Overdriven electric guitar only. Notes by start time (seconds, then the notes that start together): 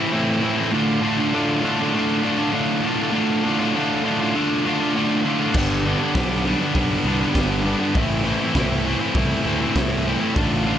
Already playing: A2 E3 E4
0.00 A3 C4
0.12 A2 E3 A3 C4 E4
0.41 E3 A3 C4 E4
0.58 A3 C4 E4
0.72 A2 D3 A3 D4 F4
1.01 D3 A3 D4 F4
1.17 A3 D4 F4
1.33 A2 D3 A3 D4 F4
1.63 D3 A3 D4 F4
1.79 A3 D4 F4
1.93 D3 A3 D4 F4
2.23 D3 A3 D4 F4
2.37 A3 D4 F4
2.51 A2 D3 A3 D4 F4
2.83 D3 A3 D4 F4
2.99 A3 D4 F4
3.12 A2 D3 A3 D4 F4
3.43 D3 A3 D4 F4
3.59 A3 D4 F4
3.74 A2 D3 A3 D4 F4
4.03 D3 A3 D4 F4
4.20 A3 D4 F4
4.34 D3 A3 D4 F4
4.66 D3 A3 D4 F4
4.79 A3 D4 F4
4.94 A2 D3 A3 D4 F4
5.25 D3 A3 D4 F4
5.41 A3 D4 F4
5.55 G2 D3 G3 B3 D4
5.86 D3 G3 B3 D4
6.01 G3 B3 D4
6.14 G2 D3 G3 B3 D4
6.45 D3 G3 B3 D4
6.60 G3 B3 D4
6.74 D3 G3 B3 D4
7.05 D3 G3 B3 D4
7.19 G3 B3 D4
7.33 G2 D3 G3 B3 D4
7.64 D3 G3 B3 D4
7.80 G3 B3 D4
7.95 A2 E3 A3 C4 E4
8.24 E3 A3 C4 E4
8.41 A3 C4 E4
8.56 A2 E3 A3 C4 E4
8.85 E3 A3 C4 E4
9.01 A3 C4 E4
9.15 E3 A3 C4 E4
9.45 E3 A3 C4 E4
9.60 A3 C4 E4
9.75 A2 E3 A3 C4 E4
10.06 E3 A3 C4 E4
10.20 A3 C4 E4
10.35 A2 D3 A3 D4 F4
10.64 D3 A3 D4 F4